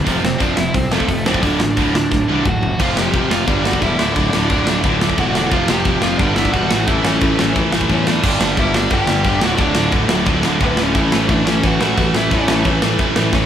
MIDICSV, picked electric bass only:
0, 0, Header, 1, 2, 480
1, 0, Start_track
1, 0, Tempo, 339751
1, 97, Time_signature, 4, 2, 24, 8
1, 19013, End_track
2, 0, Start_track
2, 0, Title_t, "Picked electric bass"
2, 0, Program_c, 0, 34
2, 96, Note_on_c, 0, 29, 88
2, 249, Note_off_c, 0, 29, 0
2, 337, Note_on_c, 0, 29, 94
2, 489, Note_off_c, 0, 29, 0
2, 572, Note_on_c, 0, 29, 93
2, 726, Note_off_c, 0, 29, 0
2, 830, Note_on_c, 0, 29, 96
2, 979, Note_off_c, 0, 29, 0
2, 1049, Note_on_c, 0, 36, 96
2, 1205, Note_off_c, 0, 36, 0
2, 1287, Note_on_c, 0, 29, 89
2, 1443, Note_off_c, 0, 29, 0
2, 1529, Note_on_c, 0, 29, 93
2, 1773, Note_off_c, 0, 29, 0
2, 1773, Note_on_c, 0, 26, 77
2, 1928, Note_off_c, 0, 26, 0
2, 2015, Note_on_c, 0, 26, 92
2, 2169, Note_off_c, 0, 26, 0
2, 2250, Note_on_c, 0, 33, 98
2, 2406, Note_off_c, 0, 33, 0
2, 2502, Note_on_c, 0, 26, 92
2, 2654, Note_off_c, 0, 26, 0
2, 2754, Note_on_c, 0, 38, 100
2, 2903, Note_off_c, 0, 38, 0
2, 2991, Note_on_c, 0, 26, 92
2, 3141, Note_off_c, 0, 26, 0
2, 3240, Note_on_c, 0, 36, 82
2, 3387, Note_off_c, 0, 36, 0
2, 3464, Note_on_c, 0, 26, 94
2, 3616, Note_off_c, 0, 26, 0
2, 3718, Note_on_c, 0, 30, 83
2, 3866, Note_off_c, 0, 30, 0
2, 3956, Note_on_c, 0, 29, 84
2, 4153, Note_off_c, 0, 29, 0
2, 4187, Note_on_c, 0, 29, 99
2, 4387, Note_off_c, 0, 29, 0
2, 4427, Note_on_c, 0, 29, 100
2, 4628, Note_off_c, 0, 29, 0
2, 4670, Note_on_c, 0, 29, 91
2, 4870, Note_off_c, 0, 29, 0
2, 4915, Note_on_c, 0, 31, 90
2, 5314, Note_off_c, 0, 31, 0
2, 5401, Note_on_c, 0, 28, 93
2, 5597, Note_off_c, 0, 28, 0
2, 5623, Note_on_c, 0, 26, 84
2, 5826, Note_off_c, 0, 26, 0
2, 5880, Note_on_c, 0, 26, 83
2, 6076, Note_off_c, 0, 26, 0
2, 6105, Note_on_c, 0, 26, 88
2, 6307, Note_off_c, 0, 26, 0
2, 6357, Note_on_c, 0, 26, 107
2, 6555, Note_off_c, 0, 26, 0
2, 6579, Note_on_c, 0, 26, 93
2, 6785, Note_off_c, 0, 26, 0
2, 6828, Note_on_c, 0, 26, 100
2, 7230, Note_off_c, 0, 26, 0
2, 7312, Note_on_c, 0, 28, 97
2, 7790, Note_off_c, 0, 28, 0
2, 7790, Note_on_c, 0, 29, 94
2, 7991, Note_off_c, 0, 29, 0
2, 8040, Note_on_c, 0, 29, 96
2, 8237, Note_off_c, 0, 29, 0
2, 8267, Note_on_c, 0, 29, 110
2, 8470, Note_off_c, 0, 29, 0
2, 8522, Note_on_c, 0, 29, 91
2, 8719, Note_off_c, 0, 29, 0
2, 8747, Note_on_c, 0, 31, 101
2, 9151, Note_off_c, 0, 31, 0
2, 9237, Note_on_c, 0, 28, 105
2, 9436, Note_off_c, 0, 28, 0
2, 9483, Note_on_c, 0, 33, 92
2, 9679, Note_off_c, 0, 33, 0
2, 9711, Note_on_c, 0, 33, 88
2, 9912, Note_off_c, 0, 33, 0
2, 9959, Note_on_c, 0, 33, 87
2, 10157, Note_off_c, 0, 33, 0
2, 10190, Note_on_c, 0, 33, 103
2, 10392, Note_off_c, 0, 33, 0
2, 10445, Note_on_c, 0, 33, 93
2, 10640, Note_off_c, 0, 33, 0
2, 10674, Note_on_c, 0, 33, 101
2, 11074, Note_off_c, 0, 33, 0
2, 11154, Note_on_c, 0, 40, 90
2, 11554, Note_off_c, 0, 40, 0
2, 11633, Note_on_c, 0, 31, 96
2, 11846, Note_off_c, 0, 31, 0
2, 11855, Note_on_c, 0, 31, 98
2, 12084, Note_off_c, 0, 31, 0
2, 12117, Note_on_c, 0, 31, 113
2, 12557, Note_off_c, 0, 31, 0
2, 12587, Note_on_c, 0, 31, 96
2, 12810, Note_off_c, 0, 31, 0
2, 12824, Note_on_c, 0, 31, 98
2, 13048, Note_off_c, 0, 31, 0
2, 13068, Note_on_c, 0, 31, 91
2, 13291, Note_off_c, 0, 31, 0
2, 13303, Note_on_c, 0, 26, 82
2, 13528, Note_off_c, 0, 26, 0
2, 13539, Note_on_c, 0, 26, 94
2, 13765, Note_off_c, 0, 26, 0
2, 13778, Note_on_c, 0, 26, 98
2, 14005, Note_off_c, 0, 26, 0
2, 14021, Note_on_c, 0, 26, 107
2, 14238, Note_off_c, 0, 26, 0
2, 14246, Note_on_c, 0, 26, 101
2, 14478, Note_off_c, 0, 26, 0
2, 14499, Note_on_c, 0, 26, 110
2, 14725, Note_off_c, 0, 26, 0
2, 14757, Note_on_c, 0, 26, 91
2, 14974, Note_off_c, 0, 26, 0
2, 14982, Note_on_c, 0, 26, 91
2, 15470, Note_off_c, 0, 26, 0
2, 15470, Note_on_c, 0, 33, 88
2, 15690, Note_off_c, 0, 33, 0
2, 15722, Note_on_c, 0, 33, 95
2, 15936, Note_off_c, 0, 33, 0
2, 15947, Note_on_c, 0, 33, 100
2, 16389, Note_off_c, 0, 33, 0
2, 16438, Note_on_c, 0, 33, 104
2, 16653, Note_off_c, 0, 33, 0
2, 16682, Note_on_c, 0, 33, 99
2, 16896, Note_off_c, 0, 33, 0
2, 16917, Note_on_c, 0, 33, 99
2, 17133, Note_off_c, 0, 33, 0
2, 17164, Note_on_c, 0, 33, 89
2, 17376, Note_off_c, 0, 33, 0
2, 17390, Note_on_c, 0, 33, 91
2, 17609, Note_off_c, 0, 33, 0
2, 17645, Note_on_c, 0, 33, 97
2, 17856, Note_off_c, 0, 33, 0
2, 17872, Note_on_c, 0, 33, 102
2, 18089, Note_off_c, 0, 33, 0
2, 18112, Note_on_c, 0, 33, 96
2, 18329, Note_off_c, 0, 33, 0
2, 18350, Note_on_c, 0, 33, 100
2, 18568, Note_off_c, 0, 33, 0
2, 18590, Note_on_c, 0, 33, 84
2, 18808, Note_off_c, 0, 33, 0
2, 18833, Note_on_c, 0, 33, 88
2, 19013, Note_off_c, 0, 33, 0
2, 19013, End_track
0, 0, End_of_file